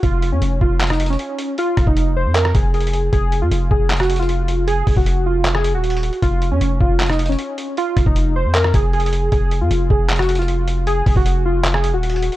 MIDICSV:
0, 0, Header, 1, 4, 480
1, 0, Start_track
1, 0, Tempo, 387097
1, 38, Time_signature, 4, 2, 24, 8
1, 15333, End_track
2, 0, Start_track
2, 0, Title_t, "Synth keys"
2, 0, Program_c, 0, 88
2, 37, Note_on_c, 0, 65, 95
2, 376, Note_off_c, 0, 65, 0
2, 400, Note_on_c, 0, 61, 82
2, 738, Note_off_c, 0, 61, 0
2, 759, Note_on_c, 0, 65, 81
2, 1097, Note_off_c, 0, 65, 0
2, 1121, Note_on_c, 0, 63, 77
2, 1343, Note_off_c, 0, 63, 0
2, 1363, Note_on_c, 0, 61, 78
2, 1925, Note_off_c, 0, 61, 0
2, 1966, Note_on_c, 0, 65, 98
2, 2301, Note_off_c, 0, 65, 0
2, 2320, Note_on_c, 0, 63, 74
2, 2658, Note_off_c, 0, 63, 0
2, 2685, Note_on_c, 0, 72, 84
2, 2905, Note_off_c, 0, 72, 0
2, 2915, Note_on_c, 0, 70, 94
2, 3140, Note_off_c, 0, 70, 0
2, 3164, Note_on_c, 0, 68, 77
2, 3380, Note_off_c, 0, 68, 0
2, 3395, Note_on_c, 0, 68, 78
2, 3848, Note_off_c, 0, 68, 0
2, 3875, Note_on_c, 0, 68, 95
2, 4215, Note_off_c, 0, 68, 0
2, 4237, Note_on_c, 0, 65, 75
2, 4576, Note_off_c, 0, 65, 0
2, 4600, Note_on_c, 0, 68, 81
2, 4938, Note_off_c, 0, 68, 0
2, 4957, Note_on_c, 0, 66, 86
2, 5181, Note_off_c, 0, 66, 0
2, 5199, Note_on_c, 0, 65, 80
2, 5763, Note_off_c, 0, 65, 0
2, 5796, Note_on_c, 0, 68, 95
2, 6136, Note_off_c, 0, 68, 0
2, 6166, Note_on_c, 0, 66, 78
2, 6501, Note_off_c, 0, 66, 0
2, 6524, Note_on_c, 0, 65, 78
2, 6860, Note_off_c, 0, 65, 0
2, 6881, Note_on_c, 0, 68, 84
2, 7103, Note_off_c, 0, 68, 0
2, 7124, Note_on_c, 0, 66, 76
2, 7686, Note_off_c, 0, 66, 0
2, 7716, Note_on_c, 0, 65, 95
2, 8056, Note_off_c, 0, 65, 0
2, 8077, Note_on_c, 0, 61, 83
2, 8416, Note_off_c, 0, 61, 0
2, 8439, Note_on_c, 0, 65, 81
2, 8777, Note_off_c, 0, 65, 0
2, 8800, Note_on_c, 0, 63, 79
2, 9023, Note_off_c, 0, 63, 0
2, 9041, Note_on_c, 0, 61, 75
2, 9604, Note_off_c, 0, 61, 0
2, 9644, Note_on_c, 0, 65, 99
2, 9980, Note_off_c, 0, 65, 0
2, 9999, Note_on_c, 0, 63, 74
2, 10337, Note_off_c, 0, 63, 0
2, 10365, Note_on_c, 0, 72, 84
2, 10585, Note_off_c, 0, 72, 0
2, 10596, Note_on_c, 0, 70, 91
2, 10820, Note_off_c, 0, 70, 0
2, 10845, Note_on_c, 0, 68, 77
2, 11062, Note_off_c, 0, 68, 0
2, 11077, Note_on_c, 0, 68, 83
2, 11529, Note_off_c, 0, 68, 0
2, 11556, Note_on_c, 0, 68, 94
2, 11896, Note_off_c, 0, 68, 0
2, 11919, Note_on_c, 0, 65, 77
2, 12257, Note_off_c, 0, 65, 0
2, 12280, Note_on_c, 0, 68, 79
2, 12618, Note_off_c, 0, 68, 0
2, 12638, Note_on_c, 0, 66, 85
2, 12862, Note_off_c, 0, 66, 0
2, 12880, Note_on_c, 0, 65, 79
2, 13443, Note_off_c, 0, 65, 0
2, 13477, Note_on_c, 0, 68, 97
2, 13816, Note_off_c, 0, 68, 0
2, 13846, Note_on_c, 0, 66, 81
2, 14181, Note_off_c, 0, 66, 0
2, 14204, Note_on_c, 0, 65, 81
2, 14540, Note_off_c, 0, 65, 0
2, 14561, Note_on_c, 0, 68, 82
2, 14783, Note_off_c, 0, 68, 0
2, 14802, Note_on_c, 0, 66, 75
2, 15333, Note_off_c, 0, 66, 0
2, 15333, End_track
3, 0, Start_track
3, 0, Title_t, "808-style bass"
3, 0, Program_c, 1, 38
3, 38, Note_on_c, 1, 29, 107
3, 398, Note_on_c, 1, 41, 100
3, 416, Note_off_c, 1, 29, 0
3, 512, Note_off_c, 1, 41, 0
3, 518, Note_on_c, 1, 29, 105
3, 749, Note_off_c, 1, 29, 0
3, 759, Note_on_c, 1, 29, 106
3, 1450, Note_off_c, 1, 29, 0
3, 2198, Note_on_c, 1, 29, 100
3, 2310, Note_off_c, 1, 29, 0
3, 2318, Note_on_c, 1, 29, 111
3, 2799, Note_on_c, 1, 41, 100
3, 2817, Note_off_c, 1, 29, 0
3, 3141, Note_off_c, 1, 41, 0
3, 3159, Note_on_c, 1, 29, 96
3, 3850, Note_off_c, 1, 29, 0
3, 3878, Note_on_c, 1, 29, 108
3, 4239, Note_on_c, 1, 41, 100
3, 4258, Note_off_c, 1, 29, 0
3, 4353, Note_off_c, 1, 41, 0
3, 4359, Note_on_c, 1, 29, 108
3, 4589, Note_off_c, 1, 29, 0
3, 4599, Note_on_c, 1, 29, 104
3, 5989, Note_off_c, 1, 29, 0
3, 6038, Note_on_c, 1, 29, 102
3, 6150, Note_off_c, 1, 29, 0
3, 6158, Note_on_c, 1, 29, 108
3, 7119, Note_on_c, 1, 27, 98
3, 7137, Note_off_c, 1, 29, 0
3, 7575, Note_off_c, 1, 27, 0
3, 7718, Note_on_c, 1, 29, 109
3, 8079, Note_on_c, 1, 41, 104
3, 8097, Note_off_c, 1, 29, 0
3, 8193, Note_off_c, 1, 41, 0
3, 8199, Note_on_c, 1, 29, 107
3, 8429, Note_off_c, 1, 29, 0
3, 8439, Note_on_c, 1, 29, 104
3, 9130, Note_off_c, 1, 29, 0
3, 9879, Note_on_c, 1, 29, 108
3, 9991, Note_off_c, 1, 29, 0
3, 9998, Note_on_c, 1, 29, 113
3, 10479, Note_on_c, 1, 41, 96
3, 10498, Note_off_c, 1, 29, 0
3, 10821, Note_off_c, 1, 41, 0
3, 10839, Note_on_c, 1, 29, 102
3, 11530, Note_off_c, 1, 29, 0
3, 11558, Note_on_c, 1, 29, 103
3, 11919, Note_on_c, 1, 41, 103
3, 11937, Note_off_c, 1, 29, 0
3, 12033, Note_off_c, 1, 41, 0
3, 12039, Note_on_c, 1, 29, 110
3, 12269, Note_off_c, 1, 29, 0
3, 12279, Note_on_c, 1, 29, 106
3, 13669, Note_off_c, 1, 29, 0
3, 13718, Note_on_c, 1, 29, 102
3, 13831, Note_off_c, 1, 29, 0
3, 13839, Note_on_c, 1, 29, 112
3, 14798, Note_on_c, 1, 27, 100
3, 14817, Note_off_c, 1, 29, 0
3, 15254, Note_off_c, 1, 27, 0
3, 15333, End_track
4, 0, Start_track
4, 0, Title_t, "Drums"
4, 38, Note_on_c, 9, 36, 94
4, 38, Note_on_c, 9, 42, 69
4, 162, Note_off_c, 9, 36, 0
4, 162, Note_off_c, 9, 42, 0
4, 278, Note_on_c, 9, 42, 66
4, 402, Note_off_c, 9, 42, 0
4, 518, Note_on_c, 9, 42, 86
4, 642, Note_off_c, 9, 42, 0
4, 759, Note_on_c, 9, 36, 95
4, 883, Note_off_c, 9, 36, 0
4, 998, Note_on_c, 9, 39, 116
4, 998, Note_on_c, 9, 42, 67
4, 1078, Note_off_c, 9, 42, 0
4, 1078, Note_on_c, 9, 42, 70
4, 1118, Note_on_c, 9, 37, 101
4, 1122, Note_off_c, 9, 39, 0
4, 1158, Note_off_c, 9, 42, 0
4, 1158, Note_on_c, 9, 42, 67
4, 1238, Note_off_c, 9, 42, 0
4, 1238, Note_on_c, 9, 42, 82
4, 1242, Note_off_c, 9, 37, 0
4, 1318, Note_off_c, 9, 42, 0
4, 1318, Note_on_c, 9, 42, 65
4, 1398, Note_off_c, 9, 42, 0
4, 1398, Note_on_c, 9, 42, 49
4, 1478, Note_off_c, 9, 42, 0
4, 1478, Note_on_c, 9, 42, 63
4, 1602, Note_off_c, 9, 42, 0
4, 1718, Note_on_c, 9, 42, 77
4, 1842, Note_off_c, 9, 42, 0
4, 1958, Note_on_c, 9, 42, 71
4, 2082, Note_off_c, 9, 42, 0
4, 2197, Note_on_c, 9, 42, 66
4, 2198, Note_on_c, 9, 36, 94
4, 2198, Note_on_c, 9, 37, 68
4, 2318, Note_off_c, 9, 36, 0
4, 2318, Note_on_c, 9, 36, 92
4, 2321, Note_off_c, 9, 42, 0
4, 2322, Note_off_c, 9, 37, 0
4, 2438, Note_on_c, 9, 42, 86
4, 2442, Note_off_c, 9, 36, 0
4, 2562, Note_off_c, 9, 42, 0
4, 2918, Note_on_c, 9, 39, 110
4, 2918, Note_on_c, 9, 42, 86
4, 3038, Note_on_c, 9, 37, 94
4, 3042, Note_off_c, 9, 39, 0
4, 3042, Note_off_c, 9, 42, 0
4, 3158, Note_on_c, 9, 42, 88
4, 3159, Note_on_c, 9, 36, 100
4, 3162, Note_off_c, 9, 37, 0
4, 3282, Note_off_c, 9, 42, 0
4, 3283, Note_off_c, 9, 36, 0
4, 3398, Note_on_c, 9, 42, 42
4, 3478, Note_off_c, 9, 42, 0
4, 3478, Note_on_c, 9, 42, 55
4, 3558, Note_off_c, 9, 42, 0
4, 3558, Note_on_c, 9, 42, 68
4, 3638, Note_off_c, 9, 42, 0
4, 3638, Note_on_c, 9, 42, 67
4, 3762, Note_off_c, 9, 42, 0
4, 3878, Note_on_c, 9, 36, 95
4, 3878, Note_on_c, 9, 42, 70
4, 4002, Note_off_c, 9, 36, 0
4, 4002, Note_off_c, 9, 42, 0
4, 4119, Note_on_c, 9, 42, 65
4, 4243, Note_off_c, 9, 42, 0
4, 4358, Note_on_c, 9, 42, 84
4, 4482, Note_off_c, 9, 42, 0
4, 4599, Note_on_c, 9, 36, 96
4, 4723, Note_off_c, 9, 36, 0
4, 4838, Note_on_c, 9, 42, 67
4, 4839, Note_on_c, 9, 39, 116
4, 4919, Note_off_c, 9, 42, 0
4, 4919, Note_on_c, 9, 42, 67
4, 4959, Note_on_c, 9, 37, 96
4, 4963, Note_off_c, 9, 39, 0
4, 4999, Note_off_c, 9, 42, 0
4, 4999, Note_on_c, 9, 42, 68
4, 5079, Note_off_c, 9, 42, 0
4, 5079, Note_on_c, 9, 42, 85
4, 5083, Note_off_c, 9, 37, 0
4, 5159, Note_off_c, 9, 42, 0
4, 5159, Note_on_c, 9, 42, 65
4, 5239, Note_off_c, 9, 42, 0
4, 5239, Note_on_c, 9, 42, 50
4, 5319, Note_off_c, 9, 42, 0
4, 5319, Note_on_c, 9, 42, 65
4, 5443, Note_off_c, 9, 42, 0
4, 5558, Note_on_c, 9, 42, 73
4, 5682, Note_off_c, 9, 42, 0
4, 5799, Note_on_c, 9, 42, 72
4, 5923, Note_off_c, 9, 42, 0
4, 6038, Note_on_c, 9, 36, 98
4, 6038, Note_on_c, 9, 46, 64
4, 6158, Note_off_c, 9, 36, 0
4, 6158, Note_on_c, 9, 36, 90
4, 6162, Note_off_c, 9, 46, 0
4, 6278, Note_on_c, 9, 42, 83
4, 6282, Note_off_c, 9, 36, 0
4, 6402, Note_off_c, 9, 42, 0
4, 6758, Note_on_c, 9, 39, 113
4, 6758, Note_on_c, 9, 42, 85
4, 6878, Note_on_c, 9, 37, 100
4, 6882, Note_off_c, 9, 39, 0
4, 6882, Note_off_c, 9, 42, 0
4, 6998, Note_on_c, 9, 42, 88
4, 7002, Note_off_c, 9, 37, 0
4, 7122, Note_off_c, 9, 42, 0
4, 7238, Note_on_c, 9, 42, 55
4, 7318, Note_off_c, 9, 42, 0
4, 7318, Note_on_c, 9, 42, 55
4, 7398, Note_off_c, 9, 42, 0
4, 7398, Note_on_c, 9, 42, 57
4, 7478, Note_off_c, 9, 42, 0
4, 7478, Note_on_c, 9, 42, 69
4, 7598, Note_off_c, 9, 42, 0
4, 7598, Note_on_c, 9, 42, 42
4, 7718, Note_off_c, 9, 42, 0
4, 7718, Note_on_c, 9, 36, 98
4, 7718, Note_on_c, 9, 42, 73
4, 7842, Note_off_c, 9, 36, 0
4, 7842, Note_off_c, 9, 42, 0
4, 7958, Note_on_c, 9, 42, 68
4, 8082, Note_off_c, 9, 42, 0
4, 8198, Note_on_c, 9, 42, 85
4, 8322, Note_off_c, 9, 42, 0
4, 8439, Note_on_c, 9, 36, 99
4, 8563, Note_off_c, 9, 36, 0
4, 8679, Note_on_c, 9, 39, 113
4, 8679, Note_on_c, 9, 42, 68
4, 8758, Note_off_c, 9, 42, 0
4, 8758, Note_on_c, 9, 42, 68
4, 8798, Note_on_c, 9, 37, 97
4, 8803, Note_off_c, 9, 39, 0
4, 8838, Note_off_c, 9, 42, 0
4, 8838, Note_on_c, 9, 42, 66
4, 8918, Note_off_c, 9, 42, 0
4, 8918, Note_on_c, 9, 42, 84
4, 8922, Note_off_c, 9, 37, 0
4, 8999, Note_off_c, 9, 42, 0
4, 8999, Note_on_c, 9, 42, 67
4, 9079, Note_off_c, 9, 42, 0
4, 9079, Note_on_c, 9, 42, 49
4, 9159, Note_off_c, 9, 42, 0
4, 9159, Note_on_c, 9, 42, 67
4, 9283, Note_off_c, 9, 42, 0
4, 9398, Note_on_c, 9, 42, 74
4, 9522, Note_off_c, 9, 42, 0
4, 9639, Note_on_c, 9, 42, 70
4, 9763, Note_off_c, 9, 42, 0
4, 9878, Note_on_c, 9, 36, 96
4, 9878, Note_on_c, 9, 42, 68
4, 9879, Note_on_c, 9, 37, 65
4, 9998, Note_off_c, 9, 36, 0
4, 9998, Note_on_c, 9, 36, 90
4, 10002, Note_off_c, 9, 42, 0
4, 10003, Note_off_c, 9, 37, 0
4, 10118, Note_on_c, 9, 42, 85
4, 10122, Note_off_c, 9, 36, 0
4, 10242, Note_off_c, 9, 42, 0
4, 10598, Note_on_c, 9, 39, 113
4, 10598, Note_on_c, 9, 42, 86
4, 10718, Note_on_c, 9, 37, 93
4, 10722, Note_off_c, 9, 39, 0
4, 10722, Note_off_c, 9, 42, 0
4, 10838, Note_on_c, 9, 42, 86
4, 10839, Note_on_c, 9, 36, 99
4, 10842, Note_off_c, 9, 37, 0
4, 10962, Note_off_c, 9, 42, 0
4, 10963, Note_off_c, 9, 36, 0
4, 11077, Note_on_c, 9, 42, 41
4, 11158, Note_off_c, 9, 42, 0
4, 11158, Note_on_c, 9, 42, 54
4, 11237, Note_off_c, 9, 42, 0
4, 11237, Note_on_c, 9, 42, 70
4, 11317, Note_off_c, 9, 42, 0
4, 11317, Note_on_c, 9, 42, 71
4, 11441, Note_off_c, 9, 42, 0
4, 11557, Note_on_c, 9, 42, 68
4, 11558, Note_on_c, 9, 36, 95
4, 11681, Note_off_c, 9, 42, 0
4, 11682, Note_off_c, 9, 36, 0
4, 11797, Note_on_c, 9, 42, 66
4, 11921, Note_off_c, 9, 42, 0
4, 12038, Note_on_c, 9, 42, 84
4, 12162, Note_off_c, 9, 42, 0
4, 12279, Note_on_c, 9, 36, 98
4, 12403, Note_off_c, 9, 36, 0
4, 12517, Note_on_c, 9, 42, 68
4, 12518, Note_on_c, 9, 39, 112
4, 12598, Note_off_c, 9, 42, 0
4, 12598, Note_on_c, 9, 42, 69
4, 12638, Note_on_c, 9, 37, 97
4, 12642, Note_off_c, 9, 39, 0
4, 12678, Note_off_c, 9, 42, 0
4, 12678, Note_on_c, 9, 42, 66
4, 12758, Note_off_c, 9, 42, 0
4, 12758, Note_on_c, 9, 42, 82
4, 12762, Note_off_c, 9, 37, 0
4, 12838, Note_off_c, 9, 42, 0
4, 12838, Note_on_c, 9, 42, 69
4, 12918, Note_off_c, 9, 42, 0
4, 12918, Note_on_c, 9, 42, 49
4, 12998, Note_off_c, 9, 42, 0
4, 12998, Note_on_c, 9, 42, 67
4, 13122, Note_off_c, 9, 42, 0
4, 13238, Note_on_c, 9, 42, 75
4, 13362, Note_off_c, 9, 42, 0
4, 13478, Note_on_c, 9, 42, 71
4, 13602, Note_off_c, 9, 42, 0
4, 13718, Note_on_c, 9, 36, 93
4, 13719, Note_on_c, 9, 46, 64
4, 13838, Note_off_c, 9, 36, 0
4, 13838, Note_on_c, 9, 36, 94
4, 13843, Note_off_c, 9, 46, 0
4, 13959, Note_on_c, 9, 42, 84
4, 13962, Note_off_c, 9, 36, 0
4, 14083, Note_off_c, 9, 42, 0
4, 14439, Note_on_c, 9, 39, 114
4, 14439, Note_on_c, 9, 42, 86
4, 14559, Note_on_c, 9, 37, 98
4, 14563, Note_off_c, 9, 39, 0
4, 14563, Note_off_c, 9, 42, 0
4, 14679, Note_on_c, 9, 42, 88
4, 14683, Note_off_c, 9, 37, 0
4, 14803, Note_off_c, 9, 42, 0
4, 14919, Note_on_c, 9, 42, 56
4, 14999, Note_off_c, 9, 42, 0
4, 14999, Note_on_c, 9, 42, 57
4, 15079, Note_off_c, 9, 42, 0
4, 15079, Note_on_c, 9, 42, 55
4, 15159, Note_off_c, 9, 42, 0
4, 15159, Note_on_c, 9, 42, 69
4, 15279, Note_off_c, 9, 42, 0
4, 15279, Note_on_c, 9, 42, 43
4, 15333, Note_off_c, 9, 42, 0
4, 15333, End_track
0, 0, End_of_file